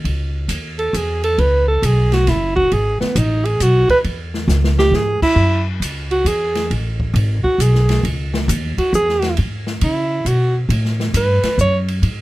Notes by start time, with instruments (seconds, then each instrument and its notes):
0.04 upright bass C#2, ride
0.48 upright bass D#2, hi-hat pedal, ride
0.79 alto saxophone A4, ride
0.93 upright bass E2, alto saxophone G#4, hi-hat pedal, ride
1.24 alto saxophone A4, ride
1.38 upright bass C#2, alto saxophone B4, ride
1.68 alto saxophone A4
1.82 upright bass B1, alto saxophone G#4, hi-hat pedal, ride
2.12 alto saxophone F#4, snare, ride
2.27 upright bass F#1, alto saxophone E4, snare, ride
2.56 alto saxophone F#4, kick
2.72 upright bass G#1, alto saxophone G#4, ride
3.01 alto saxophone B3, muted upright bass stroke, snare
3.16 upright bass A1, alto saxophone D#4, hi-hat pedal, ride
3.45 alto saxophone G#4, ride
3.60 upright bass B1, alto saxophone F#4, hi-hat pedal, ride
3.89 alto saxophone B4, muted upright bass stroke, kick, ride
4.04 upright bass E2, ride
4.34 snare
4.48 upright bass C#2, snare, hi-hat pedal
4.64 snare
4.79 alto saxophone G4, snare
4.91 upright bass G#2, snare
4.96 alto saxophone G#4
5.22 alto saxophone E4, muted upright bass stroke, kick, crash
5.36 upright bass F#2
5.80 upright bass C#2, hi-hat pedal, ride
6.11 alto saxophone F#4, ride
6.25 upright bass E2, alto saxophone G#4, hi-hat pedal, ride
6.55 snare, ride
6.71 upright bass A1, ride
7.00 kick
7.14 upright bass G#1, ride
7.44 alto saxophone F#4, muted upright bass stroke, kick
7.58 upright bass B1, alto saxophone G#4, hi-hat pedal, ride
7.75 snare
7.89 snare, ride
8.03 upright bass C#2, ride
8.34 snare
8.48 upright bass D#2, hi-hat pedal, ride
8.78 alto saxophone F#4, muted upright bass stroke, kick, ride
8.93 upright bass E2, alto saxophone G#4, hi-hat pedal
9.09 snare
9.22 snare, ride
9.37 upright bass G#2, ride
9.67 snare
9.81 upright bass C#3, alto saxophone E4, ride
10.25 upright bass B2, alto saxophone F#4, hi-hat pedal, ride
10.69 upright bass A2, ride
10.85 snare
11.00 snare
11.14 upright bass G2, alto saxophone B4, hi-hat pedal, ride
11.43 muted upright bass stroke, snare, ride
11.58 upright bass F#2, alto saxophone C#5, hi-hat pedal
11.88 ride
12.02 upright bass G#2, ride